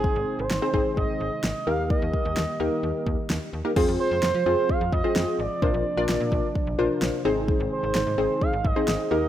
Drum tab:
CC |--------|--------|x-------|--------|
SD |--o---o-|--o---o-|--o---o-|--o---o-|
BD |o--oo---|oo---o--|o---oo--|o--oo---|

CC |--------|
SD |--o---o-|
BD |o---oo--|